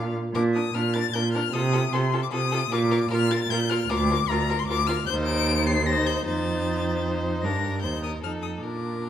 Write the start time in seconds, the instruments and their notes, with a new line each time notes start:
Already playing: cello A#2, violin F5
0.34 cello A#2, viola D4, violin A#4 D6
0.54 viola D4, violin A#4 D#6
0.74 cello A#2, viola D4, violin A#4 F6
0.94 viola D4, violin A#4 A6
1.14 cello A#2, viola D4, violin A#4 G6
1.33 viola D4, violin A#4 F6
1.53 cello C3, viola F4, violin A4 D#6
1.73 viola F4, violin A4
1.92 cello C3, viola F4, violin A4 C6
2.13 viola F4, violin A4
2.23 violin D6
2.32 cello C3, viola F4, violin A4 D#6
2.52 viola F4, violin A4
2.71 cello A#2, viola F4, violin A#4 D6
2.91 viola F4, violin A#4
3.10 cello A#2, viola F4, violin A#4 F6
3.31 viola F4, violin A#4 A6
3.50 cello A#2, viola F4, violin A#4 G6
3.70 viola F4, violin A#4 F6
3.90 cello D2, viola F4, violin A#4 D6
4.10 viola F4, violin A#4
4.29 cello D2, viola F4, violin A#4 A#5
4.49 viola F4, violin A#4
4.59 violin C6
4.68 cello D2, viola F4, violin A#4 D6
4.87 viola F4, violin A#4 F6
5.07 cello D#2, viola D#4, violin C5 G6
5.26 violin D7
5.67 violin C7
5.87 viola D#4, violin C5 A#6
6.06 violin G6
6.26 cello F2, viola D#4, violin C5 A6
7.43 cello G2, viola D4, violin A#4 A#6
7.82 cello D#2, viola D#4, violin C5 G6
8.03 violin A#4 D#6
8.23 cello F2, viola D#4, violin A4 F6
8.42 violin D#6
8.63 cello A#2, viola D4, violin A#4 D6